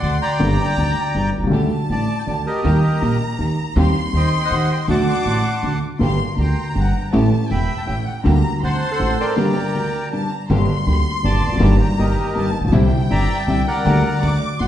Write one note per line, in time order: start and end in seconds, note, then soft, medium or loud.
0.00 0.17 D2 medium
0.00 0.18 D2 medium
0.00 0.18 D3 medium
0.00 0.18 D5 medium
0.00 0.18 F#5 medium
0.00 0.11 A5 medium
0.00 0.39 C6 medium
0.22 1.30 D5 medium
0.22 1.30 G5 medium
0.22 1.30 A#5 loud
0.39 0.55 G1 medium
0.39 0.55 G2 medium
0.39 0.55 D3 medium
0.39 0.55 G3 medium
0.39 0.55 A#3 medium
0.39 0.55 G4 medium
0.39 1.33 A#5 loud
0.77 0.93 D2 medium
0.77 0.93 D3 medium
1.15 1.30 G1 medium
1.15 1.31 G1 medium
1.15 1.30 G2 medium
1.38 1.43 B1 soft
1.38 1.42 B1 soft
1.42 1.47 C2 medium
1.42 1.48 C2 medium
1.47 1.52 C#2 medium
1.47 1.51 C#2 medium
1.47 1.67 D2 medium
1.47 1.67 D3 medium
1.47 1.67 G3 medium
1.47 1.67 A3 medium
1.47 1.67 G4 medium
1.52 1.68 D2 medium
1.52 1.68 A3 medium
1.52 1.68 D4 medium
1.52 1.68 G4 medium
1.52 2.61 A5 loud
1.90 2.05 A1 medium
1.90 2.06 A1 medium
1.90 2.05 A2 medium
1.90 2.05 A3 soft
1.90 2.06 D4 soft
1.90 2.05 G4 medium
1.90 2.26 D5 medium
1.90 2.18 A5 medium
2.19 2.23 G5 medium
2.27 2.43 D2 medium
2.27 2.43 D3 medium
2.27 2.43 A3 soft
2.27 2.43 D4 soft
2.27 2.43 G4 medium
2.27 2.36 D5 medium
2.46 3.17 G4 medium
2.46 3.17 A#4 medium
2.46 3.17 D#5 medium
2.64 2.80 D#2 medium
2.64 2.81 D#2 medium
2.64 2.80 D#3 medium
2.64 2.81 G3 medium
2.64 2.80 A#3 medium
2.64 2.81 A#3 medium
2.64 2.80 D#4 medium
2.64 2.80 G4 medium
2.64 2.81 G4 medium
2.64 3.73 A#5 loud
3.02 3.17 A#1 medium
3.02 3.18 A#1 medium
3.02 3.18 A#2 medium
3.02 3.18 A#3 medium
3.02 3.18 D#4 soft
3.02 3.18 G4 medium
3.39 3.55 D#2 medium
3.39 3.55 D#3 medium
3.39 3.55 A#3 medium
3.39 3.56 D#4 soft
3.39 3.56 G4 medium
3.76 3.92 D#2 loud
3.76 3.92 D#3 medium
3.76 3.92 G3 medium
3.76 3.92 C4 medium
3.76 3.92 D#4 medium
3.76 3.93 G4 medium
3.76 4.90 C6 loud
4.13 4.29 D#2 medium
4.13 4.29 D#3 medium
4.13 4.29 C4 soft
4.13 4.29 D#4 soft
4.13 4.29 G4 medium
4.13 4.43 C5 medium
4.13 4.42 D#5 medium
4.13 4.44 G5 medium
4.44 4.86 C5 medium
4.44 4.86 D#5 medium
4.44 4.70 F#5 medium
4.51 4.67 D#2 medium
4.51 4.67 D#3 medium
4.51 4.67 C4 medium
4.51 4.67 D#4 soft
4.51 4.67 G4 medium
4.72 4.80 G5 medium
4.88 5.04 D2 medium
4.88 5.04 D3 medium
4.88 5.04 F#3 medium
4.88 5.04 A3 medium
4.88 5.04 D4 medium
4.88 5.04 F#4 medium
4.88 5.42 D5 medium
4.88 5.08 F#5 medium
4.88 5.07 A5 medium
4.88 5.79 D6 loud
5.08 5.79 F#5 medium
5.08 5.79 A5 medium
5.08 5.79 C6 medium
5.26 5.41 A1 medium
5.26 5.42 A1 medium
5.26 5.42 A2 medium
5.26 5.42 A3 soft
5.26 5.42 D4 soft
5.26 5.42 F#4 medium
5.63 5.79 D2 medium
5.63 5.79 D3 medium
5.63 5.79 A3 soft
5.63 5.79 D4 soft
5.63 5.80 F#4 medium
5.99 6.16 G1 medium
5.99 6.17 G1 medium
5.99 6.16 G2 medium
5.99 6.16 D3 medium
5.99 6.16 G3 medium
5.99 6.17 A#3 medium
5.99 6.17 D4 medium
5.99 6.16 G4 medium
5.99 6.17 G4 medium
5.99 6.36 C6 medium
6.36 6.53 D2 medium
6.36 6.54 D2 medium
6.36 6.53 D3 medium
6.36 6.54 A#3 soft
6.36 6.54 D4 soft
6.36 6.54 G4 medium
6.36 7.09 A#5 medium
6.41 6.92 G5 medium
6.41 6.69 C6 medium
6.69 6.73 A#5 medium
6.75 6.91 G1 medium
6.75 6.91 G2 medium
6.75 6.91 A#3 soft
6.75 6.91 D4 soft
6.75 6.91 G4 medium
6.80 6.97 F#5 medium
6.99 7.06 G5 medium
7.12 7.29 A1 medium
7.12 7.29 A1 loud
7.12 7.29 A2 medium
7.12 7.29 E3 medium
7.12 7.29 A3 medium
7.12 7.28 C#4 medium
7.12 7.29 C#4 medium
7.12 7.29 G4 medium
7.12 7.51 A5 medium
7.49 7.66 E1 medium
7.49 7.67 E1 medium
7.49 7.66 E2 medium
7.49 7.66 A3 medium
7.49 7.66 C#4 soft
7.49 7.66 G4 medium
7.49 7.85 E5 medium
7.49 8.03 G5 medium
7.49 8.26 G5 medium
7.49 7.77 B5 loud
7.78 7.82 A5 medium
7.87 8.03 A1 medium
7.87 8.04 A1 medium
7.87 8.03 A2 medium
7.87 8.03 A3 medium
7.87 8.03 C#4 soft
7.87 8.03 G4 medium
7.87 7.95 E5 medium
8.05 8.14 F#5 medium
8.24 8.40 D2 medium
8.24 8.41 D2 loud
8.24 8.40 D3 medium
8.24 8.40 G3 medium
8.24 8.40 A#3 medium
8.24 8.41 A#3 medium
8.24 8.40 D4 medium
8.24 8.40 G4 medium
8.24 8.41 G4 medium
8.24 8.60 A#5 loud
8.62 8.78 D2 medium
8.62 8.78 D3 medium
8.62 8.78 C4 medium
8.62 8.78 D4 soft
8.62 8.78 F#4 medium
8.62 8.90 C5 medium
8.62 8.90 F#5 medium
8.62 8.92 A5 medium
8.62 9.33 C6 medium
8.91 9.34 A4 medium
8.91 9.34 C5 medium
8.91 9.17 F#5 loud
8.99 9.15 A1 medium
8.99 9.15 A2 medium
8.99 9.15 C4 medium
8.99 9.15 D4 soft
8.99 9.15 F#4 medium
9.20 10.09 A#4 medium
9.20 10.09 D5 medium
9.20 10.09 G5 medium
9.36 9.53 G1 medium
9.36 9.53 G2 medium
9.36 9.52 D3 medium
9.36 9.52 G3 medium
9.36 9.52 A#3 medium
9.36 9.53 A#3 medium
9.36 9.52 D4 medium
9.36 9.52 G4 medium
9.36 9.53 G4 medium
9.36 10.12 A#5 medium
9.73 9.90 D2 medium
9.73 9.90 D3 medium
9.73 9.89 A#3 medium
9.73 9.90 D4 soft
9.73 9.90 G4 medium
10.11 10.28 G1 medium
10.11 10.28 G2 medium
10.11 10.27 A#3 soft
10.11 10.28 D4 soft
10.11 10.28 G4 medium
10.11 10.30 A5 medium
10.31 10.50 A#5 medium
10.50 10.65 G1 loud
10.50 10.66 G1 loud
10.50 10.66 G2 medium
10.50 10.66 D3 medium
10.50 10.65 G3 medium
10.50 10.65 A#3 medium
10.50 10.66 A#3 medium
10.50 10.65 D4 medium
10.50 10.65 G4 medium
10.50 10.66 G4 medium
10.50 11.58 C6 loud
10.87 11.02 D2 medium
10.87 11.03 D2 medium
10.87 11.03 D3 medium
10.87 11.03 G3 soft
10.87 11.03 A#3 medium
10.87 11.03 A#3 soft
10.87 11.03 D4 soft
10.87 11.03 G4 medium
11.23 11.40 G1 medium
11.23 11.39 G2 medium
11.23 11.40 D3 medium
11.23 11.39 G3 soft
11.23 11.39 A#3 soft
11.23 11.40 A#3 medium
11.23 11.40 D4 soft
11.23 11.40 G4 medium
11.23 11.76 D5 medium
11.23 11.76 A5 loud
11.46 11.52 E1 medium
11.46 11.52 E2 medium
11.52 11.57 F1 medium
11.52 11.57 F2 medium
11.52 11.61 F#2 medium
11.58 11.62 F#1 medium
11.58 11.76 G1 loud
11.58 11.76 G2 medium
11.58 11.76 D#3 medium
11.58 11.77 G3 medium
11.58 11.76 A#3 medium
11.58 11.77 G4 medium
11.62 11.77 G1 loud
11.62 11.77 A#3 medium
11.62 11.77 D#4 medium
11.62 11.77 G4 medium
11.62 12.36 A#5 loud
11.81 11.89 G5 medium
11.97 12.14 G1 medium
11.97 12.15 G1 medium
11.97 12.14 G2 medium
11.97 12.13 D#3 medium
11.97 12.14 G3 soft
11.97 12.14 A#3 medium
11.97 12.14 A#3 soft
11.97 12.14 D#4 soft
11.97 12.14 G4 medium
11.97 12.50 G4 medium
11.97 12.50 A#4 medium
11.97 12.51 D#5 medium
12.35 12.51 G1 medium
12.35 12.52 G1 medium
12.35 12.51 G2 medium
12.35 12.51 D#3 soft
12.35 12.51 G3 soft
12.35 12.51 A#3 medium
12.35 12.51 A#3 soft
12.35 12.51 D#4 medium
12.35 12.51 G4 medium
12.35 12.65 A5 loud
12.60 12.64 A1 soft
12.60 12.64 A1 medium
12.65 12.68 A#1 medium
12.65 12.69 A#1 medium
12.65 12.73 B1 medium
12.65 12.73 A5 medium
12.69 12.73 B1 medium
12.69 12.88 C2 loud
12.69 12.88 C3 loud
12.69 12.88 D3 medium
12.69 12.88 G3 medium
12.69 12.88 C4 medium
12.69 12.88 D4 medium
12.69 12.88 E4 loud
12.73 12.89 C2 loud
12.73 12.88 C4 medium
12.73 12.88 E4 medium
12.73 13.85 G5 loud
13.10 13.26 G1 medium
13.10 13.26 G2 medium
13.10 13.26 D3 medium
13.10 13.26 G3 soft
13.10 13.25 C4 medium
13.10 13.26 C4 soft
13.10 13.25 D4 soft
13.10 13.25 E4 medium
13.10 13.27 E4 medium
13.10 13.62 D5 medium
13.10 13.48 E5 medium
13.10 13.37 A#5 loud
13.40 13.48 A5 loud
13.47 13.63 C2 medium
13.47 13.63 C3 medium
13.47 13.63 D3 soft
13.47 13.63 G3 soft
13.47 13.63 C4 medium
13.47 13.63 C4 soft
13.47 13.63 D4 soft
13.47 13.63 E4 medium
13.47 13.66 E5 loud
13.68 14.19 A#4 medium
13.68 14.38 D5 medium
13.68 14.38 F#5 loud
13.85 14.01 D2 loud
13.85 14.01 D2 medium
13.85 14.01 D3 medium
13.85 14.01 G3 medium
13.85 14.00 A#3 medium
13.85 14.01 A#3 medium
13.85 14.01 D4 medium
13.85 14.01 G4 medium
13.85 14.23 A#5 loud
14.21 14.38 D2 medium
14.21 14.38 D3 medium
14.21 14.38 F#3 soft
14.21 14.38 A3 medium
14.21 14.38 A3 soft
14.21 14.38 D4 soft
14.21 14.38 F#4 medium
14.21 14.59 D6 loud
14.60 14.68 A1 medium
14.60 14.68 A2 medium
14.60 14.68 D3 soft
14.60 14.68 F#3 soft
14.60 14.68 A3 soft
14.60 14.68 D4 soft
14.60 14.68 F#4 medium
14.60 14.65 F#5 medium
14.60 14.68 C6 medium